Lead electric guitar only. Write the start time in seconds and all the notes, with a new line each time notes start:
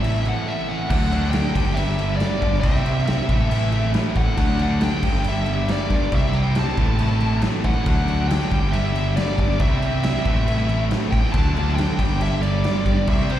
Already playing: E5
0.28 F#5
0.48 E5
0.69 F#5
0.90 F#5
1.31 G5
1.74 E5
2.16 D5
2.61 E5
3.06 E5
4.17 F#5
4.38 F#5
4.62 F#5
4.83 G5
5.29 E5
5.72 D5
6.16 E5
6.35 G5
6.59 A5
7.66 F#5
7.88 F#5
8.28 G5
8.72 E5
9.16 D5
9.61 E5
10.04 E5
11.11 G5
11.33 A5
11.75 G5
12.22 E5
12.42 D5
13.10 E5
13.31 C5